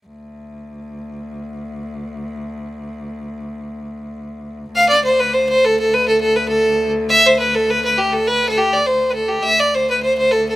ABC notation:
X:1
M:4/4
L:1/16
Q:"Swing" 1/4=205
K:Am
V:1 name="Fiddle"
z16 | z16 | z16 | z16 |
f2 d2 c2 B2 c2 c2 A2 A2 | B2 A2 A2 B2 A6 z2 | e2 c2 B2 A2 B2 B2 G2 A2 | B3 A G2 d2 c3 B A2 G2 |
e2 d2 c2 B2 c2 c2 A2 A2 |]
V:2 name="Cello" clef=bass
D,,16- | D,,16- | D,,16- | D,,16 |
D,,16- | D,,16- | D,,16- | D,,16 |
D,,16 |]